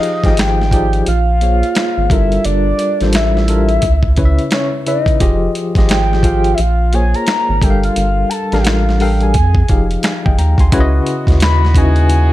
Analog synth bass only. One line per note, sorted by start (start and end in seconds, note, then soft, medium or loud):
0.24 1.02 G#1 medium
1.08 1.62 A#1 medium
1.98 2.08 G#1 medium
2.11 2.38 G1 medium
2.45 2.73 G1 loud
3.01 3.79 A1 medium
3.83 4.38 C#2 loud
5.21 5.48 F1 loud
5.76 6.54 G#1 medium
6.59 7.14 A#1 medium
7.49 7.60 G#1 medium
7.62 7.90 G1 loud
7.97 8.24 G1 loud
8.53 9.37 A1 medium
9.35 9.62 F2 loud
9.70 9.97 F1 loud
10.26 10.36 G1 medium
10.38 10.55 D#2 medium
10.58 10.69 D2 medium
10.73 11.00 C#2 loud
11.27 12.33 D#2 medium